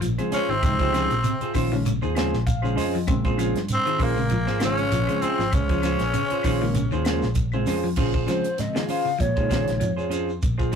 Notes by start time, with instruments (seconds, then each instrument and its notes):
0.01 fingered electric bass A#1, clean electric guitar F3, closed hi-hat, shekere
0.18 reed electric piano C#3 F3 G#3 C4, clean electric guitar F4 G#4 C5, closed hi-hat, claves, shekere
0.32 trombone section C#3, clean electric guitar C#4 F4 G#4 C5, trombone C#4, tenor saxophone C#4, muted fingered electric bass stroke, closed hi-hat, shekere
0.49 fingered electric bass G#1, trombone section C3, clean electric guitar D#3, trombone C4, tenor saxophone C4, shekere
0.62 fingered electric bass C#2, reed electric piano C3 F3 G#3 D#4, kick, closed hi-hat, claves, shekere
0.80 clean electric guitar F3 F4 G#4 C5, kick, closed hi-hat, shekere
0.93 clean electric guitar F3 C#4 F4 G#4 C5, snare, closed hi-hat, claves, shekere
1.10 fingered electric bass A#1, closed hi-hat, shekere
1.24 clean electric guitar C3, closed hi-hat, shekere
1.41 clean electric guitar F4 G#4 C5, muted fingered electric bass stroke, closed hi-hat, shekere
1.54 fingered electric bass A#1, clean electric guitar D#3 C#4 F4 C5, muted clean electric guitar stroke, kick, open hi-hat, claves, shekere
1.72 reed electric piano C#3 F3 G#3 C#4, clean electric guitar D#3, shekere
1.86 clean electric guitar C#3, closed hi-hat, shekere
2.02 fingered electric bass D#2, clean electric guitar D#3 F4 G#4 C5, shekere
2.15 reed electric piano C#3 F3 G#3 C4 G#5, clean electric guitar C#4 F4 G#4 C5, snare, closed hi-hat, claves, shekere
2.33 fingered electric bass A#1, snare, shekere
2.47 reed electric piano F5, kick, closed hi-hat, shekere
2.62 reed electric piano C#3 F3 G#3 C#4, clean electric guitar F4 G#4 C5, claves, shekere
2.76 fingered electric bass F2, clean electric guitar C#4 F4 G#4 C5, reed electric piano D#5, open hi-hat, shekere
2.95 clean electric guitar F3, shekere
3.07 fingered electric bass A#1, reed electric piano C#3 F3 G#3 C4, clean electric guitar C#3, kick, closed hi-hat, claves, shekere
3.25 clean electric guitar F4 G#4 C5, kick, shekere
3.38 clean electric guitar F3 C#4 F4 G#4 C5, closed hi-hat, claves, shekere
3.54 fingered electric bass G2, snare, closed hi-hat, shekere
3.68 trombone C4, closed hi-hat, shekere
3.73 trombone section C3, tenor saxophone C4
3.85 clean electric guitar D#3 F4 G#4 C5, closed hi-hat, shekere
3.99 fingered electric bass A#1, clean electric guitar C#4 F4 G#4 C5, kick, open hi-hat, claves, shekere
4.03 trombone section A#2, tenor saxophone A#3, trombone A#3
4.16 reed electric piano C#3 F3 G#3 C4, clean electric guitar C#3, shekere
4.30 clean electric guitar F3, closed hi-hat, shekere
4.45 fingered electric bass G#1, clean electric guitar F4 G#4 C5, snare, shekere
4.59 reed electric piano C#3 F3 G#3 C4, trombone section C#3, clean electric guitar D#3 C#4 F4 G#4 C5, trombone C#4, snare, closed hi-hat, claves, shekere
4.65 tenor saxophone C#4
4.78 closed hi-hat, shekere
4.90 fingered electric bass A#1, clean electric guitar F3, closed hi-hat, shekere
5.07 reed electric piano C#3 F3 G#3 C4, clean electric guitar F4 G#4 C5, closed hi-hat, claves, shekere
5.21 trombone section C3, trombone C4, tenor saxophone C4, clean electric guitar C#4 F4 G#4 C5, muted fingered electric bass stroke, closed hi-hat, shekere
5.39 fingered electric bass G#1, clean electric guitar F3, snare, shekere
5.51 fingered electric bass C#2, reed electric piano C#3 F3 G#3 C5, trombone section C#3, trombone C#4, tenor saxophone C#4, kick, closed hi-hat, claves, shekere
5.69 clean electric guitar F3 F4 G#4 C5, kick, closed hi-hat, shekere
5.82 clean electric guitar F3 C#4 F4 G#4 C5, snare, closed hi-hat, claves, shekere
5.99 fingered electric bass A#1, snare, closed hi-hat, shekere
6.14 clean electric guitar C#3, closed hi-hat, shekere
6.30 clean electric guitar F4 G#4 C5, muted fingered electric bass stroke, closed hi-hat, shekere
6.43 fingered electric bass A#1, clean electric guitar D#3 C#4 F4 G#4 C5, kick, open hi-hat, claves, shekere
6.62 reed electric piano C#3 F3 G#3 A#3, clean electric guitar D#3, shekere
6.75 clean electric guitar C#3, closed hi-hat, shekere
6.91 fingered electric bass D#2, clean electric guitar D#3 F4 G#4 C5, shekere
7.05 reed electric piano C#3 F3 G#3 A#3, clean electric guitar C#4 F4 G#4 C5, snare, closed hi-hat, claves, shekere
7.22 fingered electric bass A#1, snare, shekere
7.35 kick, closed hi-hat, shekere
7.52 reed electric piano C#3 F3 G#3 C4, clean electric guitar F4 G#4 C5, claves, shekere
7.66 fingered electric bass F2, clean electric guitar C#4 F4 G#4 C5, snare, open hi-hat, shekere
7.83 clean electric guitar F3, shekere
7.96 fingered electric bass A#1, clean electric guitar C#3 C#4 F4 G#4 C5, kick, crash, shekere
8.13 clean electric guitar F4 G#4 C5, kick, shekere
8.27 reed electric piano C#3 F3 G#3 C4, clean electric guitar F3 C#4 F4 G#4 C5, flute C5, snare, closed hi-hat, shekere
8.44 closed hi-hat, shekere
8.58 reed electric piano C#3 F3 G#3 C4, flute D#5, snare, closed hi-hat, shekere
8.75 clean electric guitar D#3 F4 G#4, snare, shekere
8.88 clean electric guitar C#4 F4 G#4 C5, flute F5, open hi-hat, shekere
9.05 clean electric guitar C#3, shekere
9.19 fingered electric bass A#2, clean electric guitar F3, reed electric piano G#3 C4, flute C#5, kick, closed hi-hat, shekere
9.36 reed electric piano C#3 F3 G#3 D#4, clean electric guitar F4 G#4 C5, kick, shekere
9.49 fingered electric bass A#1, clean electric guitar D#3 C#4 F4 G#4 C5, kick, snare, closed hi-hat, shekere
9.68 fingered electric bass A#1, snare, closed hi-hat, shekere
9.80 fingered electric bass F2, clean electric guitar F3, closed hi-hat, shekere
9.96 clean electric guitar F4 G#4 C5, shekere
10.10 clean electric guitar C#4 F4 G#4 C5, closed hi-hat, shekere
10.29 shekere
10.42 fingered electric bass A#1, kick, closed hi-hat, shekere
10.58 clean electric guitar F3 F4 G#4 C5, kick, shekere
10.72 clean electric guitar C#4